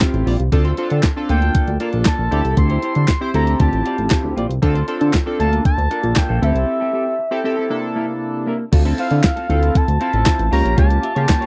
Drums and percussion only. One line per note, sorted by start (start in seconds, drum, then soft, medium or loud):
0.00 kick loud
0.00 snare loud
0.00 clap medium
0.00 closed hi-hat loud
0.14 closed hi-hat soft
0.27 open hi-hat medium
0.40 closed hi-hat medium
0.52 kick loud
0.52 closed hi-hat medium
0.65 closed hi-hat soft
0.77 closed hi-hat medium
0.90 closed hi-hat medium
1.03 kick loud
1.03 snare loud
1.03 clap medium
1.03 closed hi-hat medium
1.29 closed hi-hat medium
1.42 closed hi-hat soft
1.55 kick loud
1.55 closed hi-hat loud
1.68 closed hi-hat soft
1.80 closed hi-hat medium
1.93 closed hi-hat soft
2.05 kick loud
2.05 snare loud
2.05 clap medium
2.05 closed hi-hat loud
2.32 closed hi-hat medium
2.45 closed hi-hat soft
2.57 kick loud
2.57 closed hi-hat medium
2.70 closed hi-hat soft
2.82 closed hi-hat medium
2.95 closed hi-hat medium
3.08 kick loud
3.08 snare loud
3.08 clap medium
3.08 closed hi-hat medium
3.34 closed hi-hat medium
3.47 closed hi-hat soft
3.60 kick loud
3.60 closed hi-hat medium
3.73 closed hi-hat soft
3.86 closed hi-hat medium
3.98 closed hi-hat soft
4.10 kick loud
4.10 snare loud
4.10 clap medium
4.10 closed hi-hat loud
4.38 closed hi-hat medium
4.51 closed hi-hat medium
4.63 kick loud
4.63 closed hi-hat medium
4.75 closed hi-hat soft
4.88 closed hi-hat medium
5.01 closed hi-hat medium
5.13 kick loud
5.13 snare loud
5.13 clap medium
5.13 closed hi-hat medium
5.40 closed hi-hat medium
5.53 closed hi-hat medium
5.65 kick loud
5.65 closed hi-hat loud
5.79 closed hi-hat soft
5.91 closed hi-hat medium
6.03 closed hi-hat soft
6.16 kick loud
6.16 snare loud
6.16 clap medium
6.16 closed hi-hat medium
6.43 closed hi-hat medium
6.56 closed hi-hat soft
8.73 kick loud
8.73 closed hi-hat medium
8.73 crash loud
8.85 closed hi-hat medium
8.98 closed hi-hat medium
9.11 closed hi-hat medium
9.23 kick loud
9.23 snare loud
9.23 clap medium
9.23 closed hi-hat medium
9.37 closed hi-hat soft
9.50 closed hi-hat medium
9.63 closed hi-hat soft
9.75 kick loud
9.75 closed hi-hat loud
9.88 closed hi-hat medium
10.01 closed hi-hat medium
10.13 closed hi-hat soft
10.26 kick loud
10.26 snare loud
10.26 clap loud
10.26 clap medium
10.26 closed hi-hat loud
10.39 closed hi-hat medium
10.53 open hi-hat medium
10.66 closed hi-hat soft
10.78 kick loud
10.78 closed hi-hat medium
10.90 closed hi-hat medium
11.03 closed hi-hat medium
11.16 closed hi-hat medium
11.29 kick loud
11.29 snare loud
11.29 clap medium
11.29 closed hi-hat medium
11.42 closed hi-hat medium